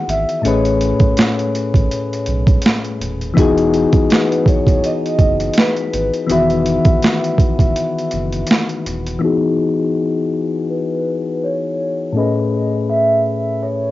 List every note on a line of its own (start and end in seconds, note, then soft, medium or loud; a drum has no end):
0.00 0.40 D#3 medium
0.00 0.39 E3 medium
0.00 0.39 B3 medium
0.00 0.41 F#4 medium
0.00 0.42 G#4 medium
0.00 0.12 F#5 loud
0.08 0.25 G#1 medium
0.08 0.40 E5 medium
0.08 closed hi-hat medium
0.29 closed hi-hat medium
0.40 3.32 A2 medium
0.40 3.32 A3 medium
0.40 0.45 D#5 medium
0.45 0.93 A1 loud
0.45 3.33 C#4 medium
0.45 3.34 G#4 medium
0.45 3.35 B4 medium
0.45 2.61 C#5 medium
0.45 closed hi-hat medium
0.65 closed hi-hat soft
0.81 closed hi-hat medium
1.00 kick medium
1.00 closed hi-hat soft
1.17 snare loud
1.17 closed hi-hat medium
1.39 closed hi-hat soft
1.55 closed hi-hat medium
1.74 1.88 G#1 medium
1.74 kick medium
1.74 closed hi-hat soft
1.91 closed hi-hat medium
2.13 closed hi-hat soft
2.26 2.59 B1 medium
2.26 closed hi-hat medium
2.47 kick medium
2.47 closed hi-hat soft
2.62 closed hi-hat medium
2.66 snare medium
2.85 closed hi-hat soft
3.01 3.32 D#1 medium
3.01 closed hi-hat medium
3.21 closed hi-hat soft
3.34 3.86 E1 loud
3.34 6.24 E3 medium
3.34 6.25 B3 medium
3.34 6.25 D#4 medium
3.34 kick loud
3.34 closed hi-hat medium
3.38 6.26 F#4 medium
3.38 6.27 G#4 medium
3.58 closed hi-hat soft
3.74 closed hi-hat medium
3.93 kick medium
3.93 closed hi-hat soft
4.10 4.45 B4 medium
4.10 snare loud
4.10 closed hi-hat medium
4.32 closed hi-hat soft
4.46 4.85 C#5 medium
4.46 kick medium
4.46 closed hi-hat medium
4.67 4.81 D#1 medium
4.67 kick medium
4.67 closed hi-hat soft
4.84 5.54 D#5 medium
4.84 closed hi-hat medium
5.06 closed hi-hat soft
5.19 5.51 F#1 medium
5.19 kick medium
5.19 closed hi-hat medium
5.40 closed hi-hat soft
5.53 closed hi-hat medium
5.58 6.33 B4 medium
5.58 snare loud
5.76 closed hi-hat soft
5.93 6.10 G#1 medium
5.93 closed hi-hat medium
6.14 closed hi-hat medium
6.27 6.78 E1 loud
6.27 9.18 D#3 medium
6.27 9.17 E3 medium
6.27 9.17 B3 medium
6.27 closed hi-hat medium
6.31 9.19 F#4 medium
6.31 9.20 B4 medium
6.31 8.46 E5 loud
6.50 closed hi-hat soft
6.66 closed hi-hat medium
6.85 kick medium
6.85 closed hi-hat soft
7.03 snare loud
7.03 closed hi-hat medium
7.24 closed hi-hat medium
7.38 kick medium
7.38 closed hi-hat medium
7.59 7.74 D#1 medium
7.59 kick medium
7.59 closed hi-hat soft
7.76 closed hi-hat medium
7.99 closed hi-hat soft
8.11 8.44 F#1 medium
8.11 closed hi-hat medium
8.33 closed hi-hat soft
8.47 closed hi-hat medium
8.51 snare loud
8.69 closed hi-hat soft
8.86 9.17 D#1 medium
8.86 closed hi-hat medium
9.06 closed hi-hat medium
9.19 12.09 E3 medium
9.19 12.10 B3 medium
9.19 12.11 D#4 medium
9.23 12.11 F#4 medium
9.23 12.12 G#4 medium
10.70 11.45 B4 medium
11.44 12.12 C#5 medium
12.12 13.91 A2 medium
12.12 13.91 A3 medium
12.12 13.91 C#4 medium
12.17 13.91 G#4 medium
12.17 13.91 B4 medium
12.17 12.91 D#5 medium
12.90 13.64 E5 medium
13.63 13.91 C#5 medium